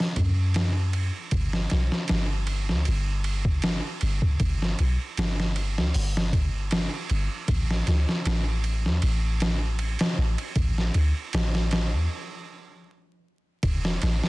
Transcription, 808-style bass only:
0.17 F#2
1.32 G1
1.72 B1
2.10 G1
2.70 D2
2.88 G1
4.02 G1
4.40 G1
4.80 B1
5.18 G1
5.77 D2
5.95 G1
7.11 G1
7.48 A1
7.87 D2
8.26 A1
8.86 E2
9.03 A1
10.18 A1
10.56 A1
10.95 D2
11.34 A1
11.92 E2
13.63 E1
14.03 A1

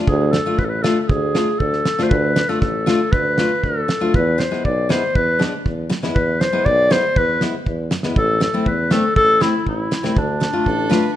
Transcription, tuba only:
0.07 D2
0.59 A1
1.10 D2
1.60 D2
1.99 D2
2.11 D2
2.62 A1
3.13 D2
3.64 D2
4.02 D2
4.14 E2
4.65 B1
5.16 E2
5.66 E2
6.04 E2
6.16 E2
6.66 B1
7.17 E2
7.67 E2
8.04 E2
8.17 A1
8.66 E2
9.16 A1
9.67 A1
10.04 C2
10.17 D2
10.67 A1

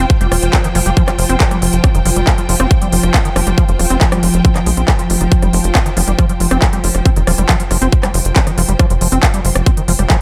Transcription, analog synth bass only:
0.21 F1
0.32 D#1
0.42 F1
0.75 F1
0.86 F1
1.19 F1
1.29 F1
1.62 F1
1.73 F1
1.95 F1
2.06 F1
2.16 F1
2.49 F1
2.60 F1
2.92 F1
3.03 F1
3.36 F1
3.47 F1
3.69 F1
3.79 D#1
3.90 F1
4.23 F1
4.34 F1
4.66 A#1
4.77 A#1
5.10 F1
5.21 F1
5.42 F1
5.53 F1
5.64 F1
5.97 F1
6.08 F1
6.40 F1
6.51 F1
6.84 F1
6.95 F1
7.16 F1
7.27 D#1
7.38 F1
7.71 F1
7.82 F1
8.14 F1
8.25 F1
8.58 F1
8.69 F1
8.90 F1
9.01 F1
9.12 F1
9.45 F1
9.56 F1
9.88 F1
9.99 F1

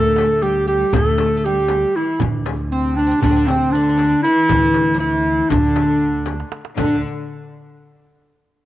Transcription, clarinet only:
Already playing: A4
0.43 G4
0.68 G4
0.95 A4
1.38 A4
1.45 G4
1.96 E4
2.70 C4
2.96 D4
3.22 D4
3.46 C4
3.72 D4
4.23 E4
4.98 E4
5.49 D4
6.78 D4

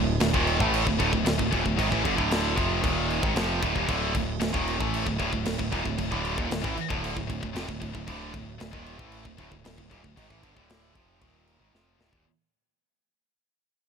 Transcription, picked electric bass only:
Already playing: D1
0.20 D1
0.34 D#1
0.60 A1
0.87 D1
1.00 D1
1.13 D1
1.25 D1
1.39 D1
1.53 D#1
1.66 D1
1.79 G#1
1.92 A1
2.05 G1
2.18 D1
2.58 F1
2.84 D#1
3.23 G#1
3.36 F1
3.62 D1
3.75 D#1
3.88 D1
4.15 D1
4.40 D1
4.54 D#1
4.81 A1
5.07 D1
5.20 D1
5.33 D1
5.46 D1
5.59 D1
5.72 D#1
5.85 D1
5.99 D1
6.12 D1
6.38 D#1
6.50 D1
6.64 A1
6.77 muted picked electric bass stroke
6.91 D1
7.17 D1
7.29 D1
7.43 D1
7.55 F1
7.69 D1
7.82 D1
7.95 D1
8.08 D1
8.34 D1
8.61 D1
8.73 D#1
8.99 A1
9.25 D1
9.39 D1
9.52 D1
9.66 D1
9.78 D1
9.91 D#1
10.05 D1
10.17 G#1
10.30 A1
10.43 G1
10.56 D1
10.95 F1
11.22 D#1
11.60 G#1
11.73 F1
11.99 D1
12.13 D#1

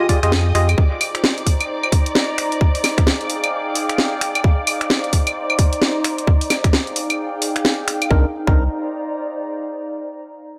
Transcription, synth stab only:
0.00 F4 G4 G#4 D#5
0.09 F4 G4 G#4 D5
0.23 F4 G4 G#4 D#5
0.55 F4 G4 G#4 D#5
8.11 C4 D4 D#4 A#4
8.47 C4 D4 D#4 A#4

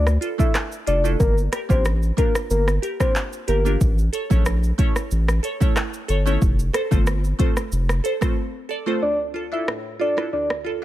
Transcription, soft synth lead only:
0.39 E5
0.87 D5
1.20 A#4
1.70 C5
2.18 A#4
2.50 A#4
3.00 C5
3.48 A#4
9.02 D5
9.52 E5
10.01 D5
10.33 D5

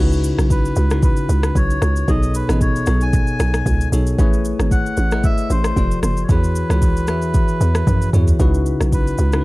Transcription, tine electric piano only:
Already playing: C#3 C#4
0.00 D#4 E4 F#4 B4
0.91 C#3 C#4 D#4 E4 F#4 B4
2.08 B2 B3 D#4 G#4 A4 C#5
2.49 B2 B3 D#4 G#4 A4 D#5
2.87 B2 B3 D#4 G#4 A4 C#5
3.92 B2 B3 D#4 G#4 A4 C#5
4.19 A3 E4 G#4 B4 C#5
5.12 A3 E4 G#4 B4 D#5
5.77 F3 F4 G4 A4 D5
6.29 E3 E4 F#4 G#4 C#5
6.70 E3 E4 F#4 G#4 C#5
7.08 E3 E4 F#4 G#4 E5
8.13 E3 E4 F#4 G#4 C#5
8.40 C#3 C#4 D#4 E4 F#4 B4
9.33 C#3 C#4 D#4 E4 F#4 A#4
9.41 B4

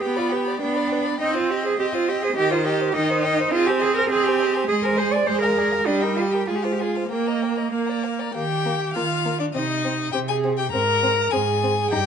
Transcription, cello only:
0.01 G4
0.18 F4
0.32 G4
0.61 D4
1.20 D#4
1.36 F4
1.50 G4
1.65 G#4
1.79 G4
1.95 F4
2.08 G4
2.23 G#4
2.36 G4
2.51 F4
2.65 G4
2.94 D#4
3.52 F4
3.67 G4
3.81 G#4
3.96 A#4
4.10 G#4
4.25 G4
4.68 G#4
4.84 A#4
4.98 C5
5.13 D5
5.27 C5
5.42 A#4
5.87 D4
6.02 D#4
6.16 F4
6.32 G4
6.47 F4
6.55 G4
6.64 F4
6.72 G4
6.81 F4
7.10 A#3
8.35 D#3
8.95 D#3
9.54 C3
10.13 C3
10.73 G#2
11.32 G#2
11.92 G2

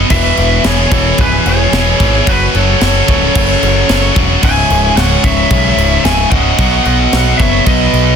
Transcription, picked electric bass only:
0.11 E1
0.38 E1
0.65 E1
0.91 E1
1.19 C#1
1.46 E1
1.73 E1
2.00 G#1
2.27 F#1
2.55 F#1
2.81 F#1
3.09 C#1
3.35 F#1
3.63 F#1
3.90 F#1
4.16 E1
4.43 C#1
4.70 C#1
4.96 C#1
5.24 C#1
5.51 B1
5.77 C#1
6.04 C#1
6.32 C#1
6.59 B1
6.86 B1
7.13 B1
7.40 F#1
7.66 B1
7.93 B1

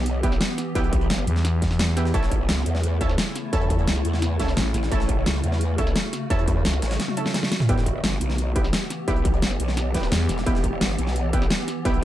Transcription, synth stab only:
Already playing: B3 E4 G4
0.23 B3 E4 G4
0.75 B3 E4 G4
1.97 B3 E4 G4
2.14 C#4 E4 A4
3.01 C#4 E4 A4
3.53 C#4 E4 A4
4.40 C#4 E4 A4
4.92 C#4 E4 A4
5.78 C#4 E4 A4
6.30 C#4 E4 A4
7.17 C#4 E4 A4
7.69 B3 E4 G4
8.56 B3 E4 G4
9.08 B3 E4 G4
9.94 B3 E4 G4
10.46 B3 E4 G4
11.33 B3 E4 G4
11.85 B3 E4 G4

